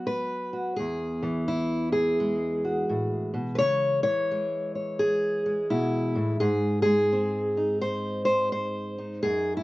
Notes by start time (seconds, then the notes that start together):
Already playing: F#3 B3 F#4
0.07 B4
0.53 F#4
0.76 E2 G#4
1.23 E3
1.48 E4
1.92 G#4
2.20 G#3
2.65 F#4
2.89 A2
3.34 B2
3.55 B4 C#5
3.60 C#3
4.03 E3 C#5
4.31 G#3
4.75 C#5
4.99 G#4
5.46 G#3
5.70 B2 E4
6.15 A2
6.40 G#2 G#4
6.82 G#3 G#4
7.12 C4
7.57 D#4
7.81 C5
8.25 C5
8.52 C5
8.98 D#4
9.23 F#2 G#4
9.57 E4